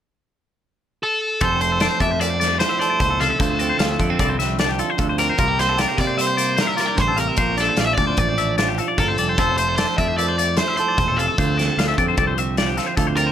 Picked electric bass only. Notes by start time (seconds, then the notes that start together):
1.41 F1
2.00 F2
3.00 C#2
3.40 D2
3.80 D2
4.00 F2
4.20 C2
4.99 D2
5.39 C2
5.98 C3
6.98 A1
7.38 A#1
7.78 A#1
7.98 D2
8.18 A1
8.98 G1
9.19 F1
9.38 F1
9.98 F2
10.98 E1
11.38 D2
11.78 D2
11.98 F2
12.18 C2
12.98 D2